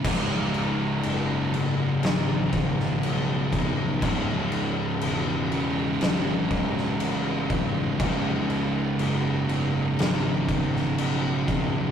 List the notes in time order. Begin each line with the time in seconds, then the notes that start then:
0.04 C#1 C#2 G#2 C#3, kick, crash
0.54 crash
1.03 F#1, crash
1.53 C#2 G#2 C#3, crash
2.03 G#1 C#2 G#2 C#3, snare, crash
2.53 kick, crash
2.80 snare
3.03 B1, crash
3.53 C#2 G#2 C#3, kick, crash
4.02 C#1 C#2 G#2 C#3, kick, crash
4.52 crash
5.01 E1, crash
5.51 C#2 G#2 C#3, crash
6.01 G#1 C#2 G#2 C#3, snare, crash
6.50 B1, kick, crash
6.77 snare
7.00 A1, crash
7.49 C#2 G#2 C#3, kick, crash
7.99 C#1 C#2 G#2 C#3, kick, crash
8.50 crash
8.99 F#1, crash
9.49 C#2 G#2 C#3, crash
9.99 G#1 C#2 G#2 C#3, snare, crash
10.49 kick, crash
10.76 snare
10.98 B1, crash
11.47 C#2 G#2 C#3, kick, crash